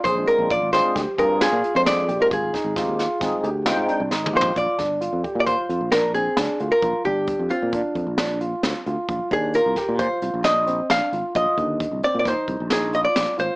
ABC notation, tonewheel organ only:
X:1
M:5/4
L:1/16
Q:1/4=133
K:Bbmix
V:1 name="Tonewheel organ"
z [A,CDF]3 z2 [A,CDA]3 z [CDFA]3 z2 [A,CDF]3 z [A,CDF] | z4 [A,CEG]3 z [A,CEA]3 z [A,CEg]3 z2 [A,CEG]3 | z16 z4 | z16 z4 |
z16 z4 | z16 z4 |]